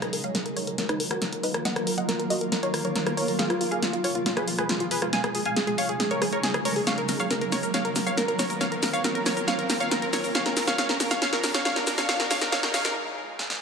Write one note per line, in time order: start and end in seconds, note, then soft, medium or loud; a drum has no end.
0.00 3.36 D#3 medium
0.00 3.36 F#3 medium
0.00 3.36 A#3 medium
0.00 5.09 F4 medium
0.00 3.36 A#4 medium
0.00 0.12 A#4 medium
0.00 cross-stick medium
0.00 closed hi-hat medium
0.00 riser medium
0.13 0.22 A#4 medium
0.13 0.23 A#4 medium
0.13 open hi-hat loud
0.24 0.33 C#5 medium
0.24 0.33 F5 medium
0.24 closed hi-hat medium
0.35 0.44 A#4 medium
0.35 snare soft
0.35 closed hi-hat medium
0.46 0.55 A#4 medium
0.46 closed hi-hat soft
0.56 0.66 A#4 medium
0.56 0.66 C#5 medium
0.56 open hi-hat medium
0.67 0.77 A#4 medium
0.67 closed hi-hat medium
0.78 0.88 A#4 medium
0.78 snare soft
0.78 closed hi-hat medium
0.89 0.99 D#4 medium
0.89 0.98 B4 medium
0.89 0.99 B4 medium
0.89 cross-stick medium
0.89 closed hi-hat medium
1.00 1.09 A#4 medium
1.00 open hi-hat loud
1.11 1.20 F#4 medium
1.11 1.20 A#4 medium
1.11 cross-stick medium
1.11 closed hi-hat medium
1.22 1.31 A#4 medium
1.22 snare soft
1.22 closed hi-hat medium
1.32 1.42 A#4 medium
1.32 closed hi-hat medium
1.43 1.53 D#4 medium
1.43 1.53 B4 medium
1.43 open hi-hat loud
1.54 1.64 A#4 medium
1.54 cross-stick medium
1.54 closed hi-hat medium
1.65 1.75 D#5 medium
1.65 1.75 F#5 loud
1.65 1.75 F#5 medium
1.65 snare soft
1.65 closed hi-hat medium
1.76 1.85 A#4 medium
1.76 cross-stick medium
1.76 closed hi-hat soft
1.87 1.96 A#4 medium
1.87 open hi-hat loud
1.98 2.07 D#5 medium
1.98 2.07 F#5 medium
1.98 closed hi-hat medium
2.08 2.18 A#4 medium
2.08 snare medium
2.08 closed hi-hat medium
2.19 2.29 A#4 medium
2.19 closed hi-hat soft
2.30 2.40 F#4 medium
2.30 2.40 D#5 medium
2.30 open hi-hat loud
2.41 2.51 A#4 medium
2.41 closed hi-hat medium
2.52 2.62 A#4 medium
2.52 snare medium
2.52 closed hi-hat medium
2.63 2.72 A#4 medium
2.63 2.72 C#5 medium
2.63 closed hi-hat medium
2.74 2.83 A#4 medium
2.74 cross-stick medium
2.74 open hi-hat loud
2.85 2.94 A#4 medium
2.85 2.94 C#5 loud
2.85 2.94 C#5 medium
2.85 closed hi-hat medium
2.96 3.05 A#4 medium
2.96 snare medium
2.96 closed hi-hat medium
3.06 3.16 A#4 medium
3.06 cross-stick medium
3.06 closed hi-hat medium
3.17 3.27 A#4 medium
3.17 3.27 C#5 medium
3.17 open hi-hat loud
3.28 3.37 A#4 medium
3.28 3.38 A#4 medium
3.28 open hi-hat medium
3.39 5.11 B2 medium
3.39 5.11 F3 medium
3.39 5.11 G#3 medium
3.39 3.48 G#4 medium
3.39 6.84 G#4 medium
3.39 3.48 F5 loud
3.39 3.48 F5 medium
3.39 snare medium
3.39 closed hi-hat medium
3.50 3.59 F4 medium
3.50 cross-stick medium
3.50 closed hi-hat soft
3.61 3.70 F4 medium
3.61 open hi-hat loud
3.71 3.81 G#4 medium
3.71 3.81 F5 medium
3.71 3.81 F5 loud
3.71 closed hi-hat medium
3.82 3.92 F4 medium
3.82 snare medium
3.82 closed hi-hat medium
3.93 4.03 F4 medium
3.93 closed hi-hat soft
4.04 4.14 F4 medium
4.04 4.14 C#5 medium
4.04 4.14 C#5 loud
4.04 open hi-hat loud
4.15 4.24 F4 medium
4.15 4.25 F4 medium
4.15 closed hi-hat soft
4.26 4.35 F4 medium
4.26 4.36 F4 medium
4.26 snare medium
4.26 closed hi-hat medium
4.37 4.46 G#4 medium
4.37 4.46 B4 medium
4.37 cross-stick medium
4.37 closed hi-hat soft
4.47 4.57 F4 medium
4.47 open hi-hat loud
4.58 4.68 G#4 medium
4.58 4.68 B4 medium
4.58 cross-stick medium
4.58 closed hi-hat medium
4.69 4.79 F4 medium
4.69 snare medium
4.69 closed hi-hat medium
4.80 4.90 F4 medium
4.80 closed hi-hat medium
4.91 5.01 G#4 medium
4.91 5.01 B4 medium
4.91 open hi-hat loud
5.02 5.12 F4 medium
5.02 cross-stick medium
5.02 closed hi-hat soft
5.13 6.85 C#3 medium
5.13 10.31 F#3 medium
5.13 6.85 G#3 medium
5.13 6.85 D#4 medium
5.13 5.22 F5 medium
5.13 5.22 G#5 loud
5.13 snare medium
5.13 closed hi-hat medium
5.24 5.33 G#4 medium
5.24 cross-stick medium
5.24 closed hi-hat soft
5.35 5.44 G#4 medium
5.35 open hi-hat loud
5.46 5.55 F5 medium
5.46 5.55 G#5 medium
5.46 5.55 G#5 loud
5.46 closed hi-hat soft
5.56 5.66 G#4 medium
5.56 snare medium
5.56 closed hi-hat medium
5.67 5.77 G#4 medium
5.67 closed hi-hat soft
5.78 5.88 C#5 medium
5.78 5.87 F5 medium
5.78 5.88 F5 loud
5.78 open hi-hat loud
5.89 5.98 G#4 medium
5.89 5.99 G#4 medium
5.89 closed hi-hat medium
6.00 6.09 G#4 medium
6.00 snare medium
6.00 closed hi-hat medium
6.11 6.20 A#4 medium
6.11 6.20 C#5 medium
6.11 closed hi-hat soft
6.22 6.31 G#4 medium
6.22 cross-stick medium
6.22 open hi-hat loud
6.33 6.42 A#4 medium
6.33 6.42 C#5 medium
6.33 closed hi-hat soft
6.43 6.53 G#4 medium
6.43 snare medium
6.43 closed hi-hat medium
6.54 6.64 G#4 medium
6.54 cross-stick medium
6.54 closed hi-hat soft
6.65 6.75 A#4 medium
6.65 6.75 C#5 medium
6.65 open hi-hat loud
6.76 6.85 G#4 medium
6.76 6.86 G#4 medium
6.76 open hi-hat medium
6.87 10.31 D#3 medium
6.87 10.31 A#3 medium
6.87 12.05 F4 medium
6.87 10.31 A#4 medium
6.87 6.96 C#5 medium
6.87 6.96 F5 medium
6.87 snare medium
6.87 closed hi-hat medium
6.87 shaker soft
6.98 7.07 A#4 medium
6.98 closed hi-hat soft
7.09 7.18 A#4 medium
7.09 snare medium
7.09 open hi-hat loud
7.09 shaker medium
7.20 7.29 C#5 medium
7.20 7.29 F5 medium
7.20 closed hi-hat soft
7.20 shaker soft
7.31 7.40 A#4 medium
7.31 snare medium
7.31 closed hi-hat medium
7.31 shaker soft
7.41 7.51 A#4 medium
7.41 closed hi-hat soft
7.52 7.62 A#4 medium
7.52 7.62 C#5 medium
7.52 snare medium
7.52 open hi-hat loud
7.52 shaker medium
7.63 7.72 A#4 medium
7.63 closed hi-hat medium
7.63 shaker soft
7.74 7.83 C#5 medium
7.74 7.83 F5 medium
7.74 snare medium
7.74 closed hi-hat medium
7.74 shaker soft
7.85 7.94 A#4 medium
7.85 closed hi-hat medium
7.96 8.05 A#4 medium
7.96 snare medium
7.96 open hi-hat loud
7.96 shaker medium
8.06 8.16 C#5 medium
8.06 8.16 F5 medium
8.06 closed hi-hat soft
8.06 shaker soft
8.17 8.27 A#4 medium
8.17 snare medium
8.17 closed hi-hat medium
8.17 shaker soft
8.28 8.38 A#4 medium
8.28 closed hi-hat medium
8.39 8.48 A#4 medium
8.39 8.48 C#5 medium
8.39 snare medium
8.39 open hi-hat loud
8.39 shaker medium
8.50 8.59 A#4 medium
8.50 closed hi-hat medium
8.50 shaker soft
8.61 8.70 C#5 medium
8.61 8.70 F5 medium
8.61 snare medium
8.61 closed hi-hat medium
8.61 shaker soft
8.72 8.81 A#4 medium
8.72 closed hi-hat soft
8.82 8.92 A#4 medium
8.82 snare medium
8.82 open hi-hat loud
8.82 shaker medium
8.93 9.03 C#5 medium
8.93 9.03 F5 medium
8.93 closed hi-hat soft
8.93 shaker soft
9.04 9.14 A#4 medium
9.04 snare medium
9.04 closed hi-hat medium
9.04 shaker soft
9.15 9.24 A#4 medium
9.15 closed hi-hat soft
9.26 9.35 A#4 medium
9.26 9.35 C#5 medium
9.26 snare medium
9.26 open hi-hat loud
9.26 shaker medium
9.37 9.46 A#4 medium
9.37 closed hi-hat soft
9.37 shaker soft
9.47 9.57 C#5 medium
9.47 9.57 F5 loud
9.47 9.57 F5 medium
9.47 snare medium
9.47 closed hi-hat medium
9.47 shaker soft
9.58 9.68 A#4 medium
9.58 closed hi-hat medium
9.69 9.79 A#4 medium
9.69 snare medium
9.69 open hi-hat loud
9.69 shaker medium
9.80 9.90 C#5 medium
9.80 9.90 F5 loud
9.80 9.90 F5 medium
9.80 closed hi-hat medium
9.80 shaker soft
9.91 10.01 A#4 medium
9.91 snare medium
9.91 closed hi-hat medium
9.91 shaker soft
10.02 10.12 A#4 medium
10.02 closed hi-hat medium
10.13 10.22 A#4 medium
10.13 10.22 C#5 medium
10.13 snare medium
10.13 open hi-hat loud
10.13 shaker medium
10.24 10.33 A#4 medium
10.24 open hi-hat medium
10.24 shaker soft
10.35 12.07 B2 medium
10.35 12.07 F3 medium
10.35 12.07 G#3 medium
10.35 13.62 G#4 medium
10.35 10.44 C#5 medium
10.35 10.44 F5 loud
10.35 10.44 F5 medium
10.35 snare medium
10.35 closed hi-hat medium
10.35 shaker soft
10.46 10.55 A#4 medium
10.46 snare medium
10.46 closed hi-hat medium
10.56 10.66 A#4 medium
10.56 snare medium
10.56 open hi-hat loud
10.56 shaker medium
10.67 10.77 C#5 medium
10.67 10.77 F5 medium
10.67 snare medium
10.67 closed hi-hat medium
10.67 shaker soft
10.78 10.88 C#5 medium
10.78 10.88 F5 loud
10.78 snare medium
10.78 closed hi-hat medium
10.78 shaker soft
10.89 10.99 A#4 medium
10.89 snare medium
10.89 closed hi-hat medium
11.00 11.09 A#4 medium
11.00 snare loud
11.00 open hi-hat loud
11.00 shaker medium
11.11 11.20 C#5 medium
11.11 11.20 F5 loud
11.11 11.20 F5 medium
11.11 snare medium
11.11 closed hi-hat medium
11.11 shaker soft
11.22 11.31 C#5 medium
11.22 11.31 F5 medium
11.22 11.31 F5 loud
11.22 snare medium
11.22 closed hi-hat medium
11.22 shaker soft
11.33 11.42 A#4 medium
11.33 snare medium
11.33 closed hi-hat medium
11.43 11.53 A#4 medium
11.43 snare medium
11.43 open hi-hat loud
11.43 shaker medium
11.54 11.64 C#5 medium
11.54 11.63 F5 medium
11.54 11.64 F5 medium
11.54 snare medium
11.54 closed hi-hat medium
11.54 shaker soft
11.65 11.75 C#5 medium
11.65 11.75 F5 loud
11.65 snare loud
11.65 closed hi-hat loud
11.65 shaker soft
11.76 11.85 A#4 medium
11.76 snare medium
11.76 closed hi-hat medium
11.87 11.96 A#4 medium
11.87 snare loud
11.87 open hi-hat loud
11.87 shaker medium
11.98 12.07 C#5 medium
11.98 12.07 F5 medium
11.98 snare medium
11.98 closed hi-hat medium
11.98 shaker soft
12.09 13.62 C#3 medium
12.09 13.62 F#3 medium
12.09 13.62 G#3 medium
12.09 13.62 D#4 medium
12.09 12.18 C#5 medium
12.09 12.18 F5 loud
12.09 snare loud
12.09 closed hi-hat medium
12.09 shaker soft
12.20 12.29 A#4 medium
12.20 snare medium
12.20 closed hi-hat medium
12.30 12.40 C#5 medium
12.30 12.40 F5 loud
12.30 snare loud
12.30 open hi-hat loud
12.30 shaker medium
12.41 12.50 A#4 medium
12.41 12.51 A#4 medium
12.41 snare medium
12.41 closed hi-hat medium
12.41 shaker soft
12.52 12.62 C#5 medium
12.52 12.61 F5 loud
12.52 12.62 F5 loud
12.52 snare loud
12.52 closed hi-hat loud
12.52 shaker soft
12.63 12.72 A#4 medium
12.63 snare medium
12.63 closed hi-hat medium
12.74 12.83 C#5 medium
12.74 12.83 F5 loud
12.74 snare loud
12.74 open hi-hat loud
12.74 shaker medium
12.85 12.94 A#4 medium
12.85 snare loud
12.85 closed hi-hat medium
12.85 shaker soft
13.39 snare medium
13.50 snare medium